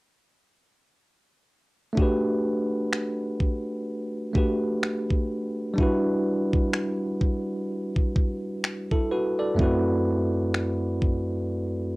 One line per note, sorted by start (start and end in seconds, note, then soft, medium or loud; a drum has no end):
1.93 4.29 A3 medium
1.93 4.30 D4 medium
1.97 4.31 F#4 medium
1.97 4.33 G4 medium
1.97 kick loud
2.02 4.34 B4 medium
2.93 finger snap loud
3.40 kick medium
4.33 5.77 A3 medium
4.33 5.75 D4 soft
4.33 5.78 F#4 soft
4.33 5.79 G4 soft
4.33 kick medium
4.38 5.79 B4 medium
4.83 finger snap loud
5.11 kick medium
5.74 9.53 G3 medium
5.74 9.54 D4 medium
5.78 8.12 E4 medium
5.78 8.13 F#4 medium
5.78 kick loud
5.83 8.15 B4 medium
6.53 kick medium
6.73 finger snap loud
7.21 kick medium
7.96 kick medium
8.16 kick medium
8.64 finger snap loud
8.91 9.11 E4 medium
8.91 9.11 A4 medium
8.91 kick medium
9.11 9.38 F#4 medium
9.11 9.38 B4 medium
9.39 9.85 A4 medium
9.39 9.84 D5 medium
9.55 11.96 F#2 medium
9.55 11.96 A3 medium
9.55 11.96 C4 medium
9.59 11.96 E4 medium
9.59 11.95 F#4 medium
9.59 kick loud
9.64 11.95 B4 medium
10.54 finger snap loud
11.02 kick medium